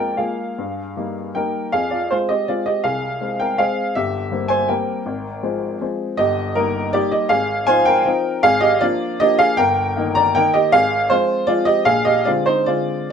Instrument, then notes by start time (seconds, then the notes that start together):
upright piano
Already playing: F2 G#3 A#3 F4 D5 G5
0.00 A#4
0.17 G#3 A#3 F4 G#4 F5
0.58 G2
0.97 G3 A#3 D#4
1.35 G3 A#3 D#4 A#4 G5
1.72 F2 G#4 F5
1.90 F4 D5
2.11 G#3 C4 F4 C5
2.29 G4 D#5
2.48 G#3 C4 F4 D5
2.66 G4 D#5
2.84 C2 G#4 F5
3.21 G#3 C4
3.40 A#4 G5
3.58 G#3 C4 G#4 F5
3.95 G1 G4 E5
4.32 G3 A#3 C4
4.48 C5 G#5
4.68 G3 A#3 C4 A#4 G5
5.06 G#1
5.43 F3 G#3 C4
5.81 F3 G#3 C4
6.17 G1 G4 D#5
6.55 G3 A#3 D#4 A#4
6.93 G3 A#3 D#4 G4 D5
7.12 G4 D#5
7.29 G#1 G#4 F5
7.67 F3 C4 D#4 C5 G#5
7.85 A#4 G5
8.05 F3 C4 D#4
8.43 G#1 G#4 F5
8.61 G4 D#5
8.81 F3 A#3 D4 F4 D5
9.20 F3 A#3 D4 G4 D#5
9.39 G#4 F5
9.57 G1 A#4 G5
9.96 D#3 A#3 D#4
10.15 D5 A#5
10.35 D#3 A#3 D#4 A#4 G5
10.54 G4 D#5
10.72 G#1 G#4 F5
11.10 F3 G#3 C4 F4 C5
11.47 F3 G#3 C4 F4 D5
11.65 G4 D#5
11.85 A#1 G#4 F5
12.05 G4 D#5
12.25 D3 G#3 C4 F4 D5
12.46 D#4 C5
12.66 D3 G#3 C4 F4 D5